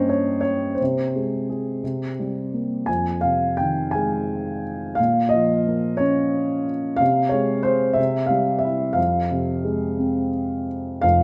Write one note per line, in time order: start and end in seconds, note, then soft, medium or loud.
0.00 0.76 G2 medium
0.00 0.43 G3 soft
0.00 0.76 A#3 soft
0.00 0.77 C#4 soft
0.00 0.75 C5 medium
0.00 0.09 C#5 medium
0.00 0.82 D#5 medium
0.00 0.82 G5 medium
0.09 0.39 C#5 medium
0.41 0.75 C#5 medium
0.75 2.11 C5 medium
0.81 1.80 C3 medium
1.16 1.81 G#3 soft
1.50 1.82 G#4 soft
1.84 2.85 C3 soft
2.20 2.87 G3 soft
2.53 2.87 A#3 soft
2.86 4.95 F2 soft
2.86 3.20 G#5 medium
3.21 4.61 C3 soft
3.21 3.55 F5 medium
3.57 4.95 D#3 soft
3.57 3.91 G5 medium
3.91 4.96 G#3 soft
3.91 4.93 G#5 medium
4.95 5.32 F5 medium
4.99 6.97 A#2 medium
5.29 6.01 D#5 medium
5.33 6.64 F3 soft
5.67 6.97 A#3 soft
5.97 6.97 C#4 soft
5.97 6.70 C#5 medium
6.96 7.95 C3 medium
6.96 7.29 F5 medium
7.29 7.96 G#3 soft
7.29 7.61 C#5 medium
7.63 7.97 G#4 soft
7.63 7.98 C5 medium
7.93 8.94 C3 medium
7.93 8.30 E5 medium
8.26 8.95 G3 soft
8.26 8.63 F5 medium
8.59 8.96 E5 medium
8.64 8.96 E4 soft
8.93 10.99 F2 medium
8.93 10.28 F5 medium
9.31 10.65 C3 soft
9.65 10.99 G#3 soft
9.99 11.00 C4 soft
11.02 11.23 F1 soft
11.02 11.23 F2 medium
11.02 11.23 F5 medium